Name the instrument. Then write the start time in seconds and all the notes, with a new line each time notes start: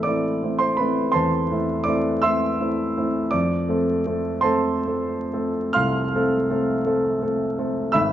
grand piano
Already playing: A1 A3 C4 E4 E5 C6 E6
0.03 A3 C4 E4 D5 D6
0.43 A3 C4 E4
0.59 C5 C6
0.77 A3 C4 E4 B4 B5
1.12 E2 C5 A5 C6
1.51 A3 C4 E4
1.84 A3 C4 D5 D6
1.88 E4
2.22 A3 C4 E4 E5 C6 E6
2.60 A3 C4 E4
2.97 A3 C4 E4
3.31 F2 D5 D6
3.69 A3 C4 A4
4.06 A3 C4 A4
4.41 A3 C4 A4 C5 A5 C6
4.87 A3 C4 A4
5.33 A3 C4 A4
5.73 C2 F5 C6 F6
6.15 A3 C4 A4
6.50 A3 C4 A4
6.85 A3 C4 A4
7.21 A3 C4 A4
7.58 A3 C4 A4
7.92 G#1 E5 B5 E6